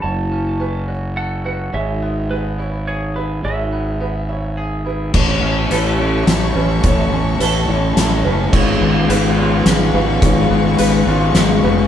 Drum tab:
CC |------|------|------|x-----|
HH |------|------|------|--x-x-|
SD |------|------|------|----o-|
BD |------|------|------|o-----|

CC |------|x-----|------|
HH |x-x-x-|--x-x-|x-x-x-|
SD |----o-|----o-|----o-|
BD |o-----|o-----|o-----|